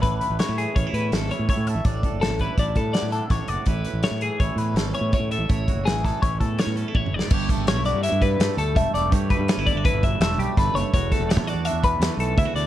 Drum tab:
CC |------------------------------|------------------------------|------------------------------|------------------------------|
HH |x--x--x--x--x--x--x--x--x--x--|x--x--x--x--x--x--x--x--x--x--|x--x--x--x--x--x--x--x--x--x--|x--x--x--x--x--x--x--x--------|
SD |------o-----------o-----------|------o-----------o-----o-----|------o-----------o-----------|------o--o--------o---------o-|
T1 |------------------------------|------------------------------|------------------------------|------------------------o-----|
T2 |------------------------------|------------------------------|------------------------------|--------------------------o---|
BD |o-----------o-----------o-----|o--o-----o--o--o--------o-----|o-----------o-----------o-----|o--o-----o--o--o--------o-----|

CC |x-----------------------------|------------------------------|------------------------------|
HH |---x--x--x--x--x--x--x--x--x--|x--x--x--x--x--x--x--x--x--x--|x--x--x--x--x--x--x--x--x--x--|
SD |------o-----------o-----------|------o-----------o-----o-----|---o--o-----------o-----------|
T1 |------------------------------|------------------------------|------------------------------|
T2 |------------------------------|------------------------------|------------------------------|
BD |o--o-----------o--------o-----|o--o-----o--o--o--------o-----|o--o-----------o--------o-----|